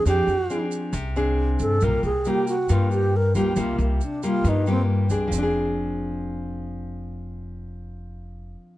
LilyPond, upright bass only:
\new Staff \with { instrumentName = "Upright bass" } { \clef bass \time 4/4 \key f \dorian \tempo 4 = 137 f,8 f,8 r4 c,4. g,8 | c,8 c,8 r4 g,4. c,8 | c,8 c,8 r4 g,4. c,8 | f,,1~ |
f,,1 | }